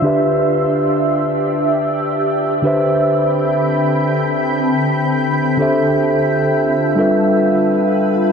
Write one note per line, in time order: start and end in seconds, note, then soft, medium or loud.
0.00 2.61 D3 medium
0.00 2.61 D4 medium
0.00 2.62 D4 medium
0.00 2.61 E5 medium
0.04 2.63 G4 medium
0.04 2.62 G4 medium
0.04 2.63 B4 medium
0.04 2.64 E5 medium
2.62 5.39 D3 medium
2.62 6.94 D3 medium
2.62 5.57 C4 medium
2.62 5.40 D4 medium
2.62 5.40 G4 medium
2.62 8.32 A4 medium
2.62 5.40 B4 medium
2.62 5.41 C5 medium
2.62 8.32 G5 medium
2.62 5.57 B5 medium
2.67 5.41 E5 medium
5.57 6.95 D3 medium
5.57 6.96 D4 medium
5.57 8.32 F4 medium
5.57 6.96 G4 medium
5.57 6.97 A4 medium
5.57 6.97 C5 medium
5.57 8.32 E5 medium
5.62 6.98 E5 medium
6.96 8.32 G3 medium
6.96 8.32 D4 medium
6.96 8.32 F4 medium
6.96 8.32 A4 medium
6.96 8.32 B4 medium
7.00 8.32 E5 medium